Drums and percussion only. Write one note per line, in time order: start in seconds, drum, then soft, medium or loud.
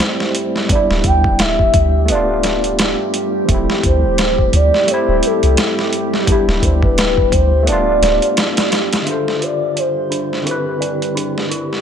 0.00 snare loud
0.20 snare soft
0.35 closed hi-hat medium
0.56 snare soft
0.69 kick loud
0.69 closed hi-hat medium
0.91 snare soft
1.04 kick medium
1.04 closed hi-hat medium
1.24 kick medium
1.39 snare loud
1.39 closed hi-hat medium
1.59 kick medium
1.74 kick loud
1.74 closed hi-hat medium
2.08 closed hi-hat medium
2.43 snare medium
2.43 closed hi-hat medium
2.64 closed hi-hat soft
2.79 snare loud
2.79 closed hi-hat medium
3.14 closed hi-hat medium
3.49 kick loud
3.49 closed hi-hat medium
3.70 snare medium
3.83 kick loud
3.83 closed hi-hat medium
4.18 snare loud
4.18 closed hi-hat medium
4.38 kick medium
4.53 closed hi-hat medium
4.74 snare soft
4.88 closed hi-hat medium
5.23 closed hi-hat medium
5.43 closed hi-hat soft
5.57 snare loud
5.57 closed hi-hat medium
5.79 snare soft
5.93 closed hi-hat medium
6.14 snare soft
6.27 kick loud
6.27 closed hi-hat medium
6.49 snare soft
6.62 kick medium
6.62 closed hi-hat medium
6.83 kick loud
6.98 snare loud
6.98 closed hi-hat medium
7.17 kick medium
7.32 kick medium
7.32 closed hi-hat medium
7.67 closed hi-hat medium
8.03 snare medium
8.03 closed hi-hat medium
8.22 closed hi-hat soft
8.37 snare loud
8.37 closed hi-hat medium
8.57 snare loud
8.57 closed hi-hat medium
8.72 snare loud
8.72 closed hi-hat medium
8.93 snare loud
8.93 closed hi-hat medium
9.07 closed hi-hat medium
9.28 snare soft
9.42 closed hi-hat medium
9.77 closed hi-hat medium
10.12 closed hi-hat medium
10.33 snare soft
10.47 closed hi-hat medium
10.82 closed hi-hat medium
11.02 closed hi-hat soft
11.17 closed hi-hat medium
11.38 snare soft
11.51 closed hi-hat medium
11.73 snare soft